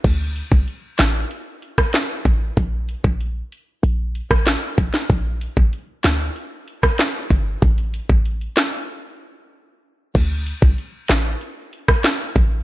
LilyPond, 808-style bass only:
\new Staff \with { instrumentName = "808-style bass" } { \clef bass \time 4/4 \key g \dorian \tempo 4 = 95 d,8. c,16 r8 a,,8 r4. a,,8 | bes,,8. bes,,8. r8 bes,,8. a,,8 r16 bes,,16 r16 | bes,,8. a,,16 r8 d,8 r4. g,,8 | a,,8. a,,8. r2 r8 |
d,8. c,16 r8 a,,8 r4. a,,8 | }